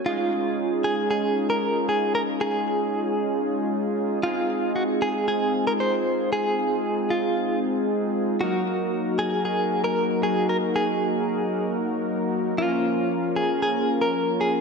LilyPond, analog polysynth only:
\new Staff \with { instrumentName = "Analog polysynth" } { \time 4/4 \key des \major \tempo 4 = 115 <aes des' ees' f' aes'>1~ | <aes des' ees' f' aes'>1 | <aes c' ees' f' aes'>1~ | <aes c' ees' f' aes'>1 |
<ges bes ees' ges' bes'>1~ | <ges bes ees' ges' bes'>1 | <f bes des' f' bes'>1 | }